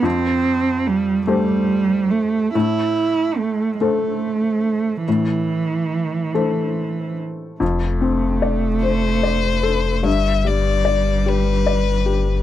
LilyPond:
<<
  \new Staff \with { instrumentName = "Violin" } { \time 6/8 \key f \lydian \tempo 4. = 49 r2. | r2. | r2. | r4. c''4. |
e''8 d''4 b'4. | }
  \new Staff \with { instrumentName = "Felt piano" } { \time 6/8 \key f \lydian f,4. <a g' c''>4. | a,4. <a a' c''>4. | a,4. <a a' c''>4. | f,8 c'8 d''8 c''8 d''8 a'8 |
g,8 g8 d''8 g'8 d''8 g'8 | }
  \new Staff \with { instrumentName = "Cello" } { \time 6/8 \key f \lydian c'4 g8 g4 a8 | e'4 a8 a4. | e2~ e8 r8 | a2. |
g2. | }
  \new Staff \with { instrumentName = "Sub bass" } { \clef bass \time 6/8 \key f \lydian r2. | r2. | r2. | f,,2. |
g,,2. | }
>>